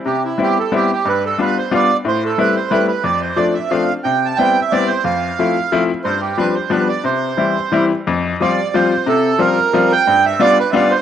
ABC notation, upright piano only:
X:1
M:3/4
L:1/8
Q:1/4=180
K:C
V:1 name="Upright piano"
C,2 [G,B,CE] z [G,B,CE] z | G,,2 [G,B,DF] z [G,B,DF] z | A,,2 [G,A,CE] z [G,A,CE] z | F,,2 [F,A,CD] z [F,A,CD] z |
C,2 [G,B,CE] z [G,B,CE] z | F,,2 [F,A,CE] z [F,A,CE] z | G,,2 [F,G,CD] z [F,G,B,D] z | C,2 [E,G,CE] z [E,G,CE] z |
[K:F] F,,2 [F,G,CF] z [F,G,CF] z | C,2 [F,G,CF] z [F,G,CF] z | G,,2 [G,=B,DF] z [G,B,DF] z |]